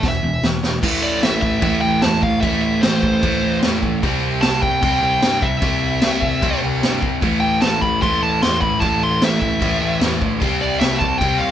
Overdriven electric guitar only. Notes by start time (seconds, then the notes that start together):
0.04 E2 B2
0.23 E2 B2
0.43 E2 B2
0.63 E2 B2
0.82 A2 E3 A3
1.60 A2 E3 A3
2.42 A2 E3 A3
3.22 A2 E3 A3
4.03 C3 G3 C4
4.82 C3 G3 C4
5.62 C3 G3 C4
6.41 C3 G3 C4
7.22 A2 E3 A3
8.01 A2 E3 A3
8.81 A2 E3 A3
9.60 A2 E3 A3
10.40 C3 G3 C4
11.20 C3 G3 C4